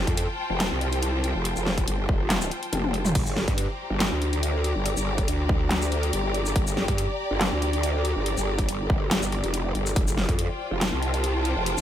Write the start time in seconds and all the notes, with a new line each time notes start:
Already playing: F4 C5 G5 A5
0.07 F2, kick, closed hi-hat
0.17 closed hi-hat
0.50 F1
0.60 snare, clap, closed hi-hat
0.71 C2
0.81 closed hi-hat
0.93 closed hi-hat
1.02 closed hi-hat
1.24 closed hi-hat
1.35 F1
1.45 closed hi-hat
1.56 F1, shaker
1.66 snare
1.78 kick, closed hi-hat
1.88 G1, closed hi-hat
2.09 F1, kick
2.30 snare, clap, closed hi-hat
2.41 shaker
2.51 closed hi-hat
2.63 closed hi-hat
2.73 F1, closed hi-hat, high tom
2.84 high tom
2.94 closed hi-hat
3.05 mid tom, shaker
3.15 G1 G4, kick, closed hi-hat, crash
3.26 shaker
3.32 A#5
3.36 snare
3.48 G2, kick, closed hi-hat
3.52 D5
3.58 closed hi-hat
3.90 G1
4.00 snare, clap, closed hi-hat
4.12 D2
4.22 closed hi-hat
4.33 closed hi-hat
4.43 closed hi-hat
4.64 closed hi-hat
4.75 G1
4.86 closed hi-hat
4.97 G1, shaker
5.18 kick, closed hi-hat
5.28 D2, closed hi-hat
5.49 kick
5.71 snare, clap, closed hi-hat
5.82 shaker
5.92 closed hi-hat
6.03 closed hi-hat
6.13 G1, closed hi-hat
6.34 closed hi-hat
6.46 shaker
6.56 G1, kick, closed hi-hat
6.67 shaker
6.77 snare
6.88 G2, kick, closed hi-hat
6.98 closed hi-hat
7.31 G1
7.41 snare, clap, closed hi-hat
7.52 D2
7.62 closed hi-hat
7.73 closed hi-hat
7.83 closed hi-hat
8.05 closed hi-hat
8.16 G1
8.26 closed hi-hat
8.37 G1, shaker
8.59 kick, closed hi-hat
8.68 G1, closed hi-hat
8.90 G1, kick
9.11 snare, clap, closed hi-hat
9.22 G1, shaker
9.32 closed hi-hat
9.44 F1, closed hi-hat
9.54 closed hi-hat
9.75 G1, closed hi-hat
9.86 shaker
9.96 F1 F4, kick, closed hi-hat
10.07 shaker
10.17 snare
10.29 F2, kick, closed hi-hat
10.33 C5
10.39 closed hi-hat
10.45 G5
10.71 F1
10.79 A5, snare, clap, closed hi-hat
10.92 C2
11.03 closed hi-hat
11.14 closed hi-hat
11.24 closed hi-hat
11.45 closed hi-hat
11.56 F1
11.66 closed hi-hat
11.78 F1, shaker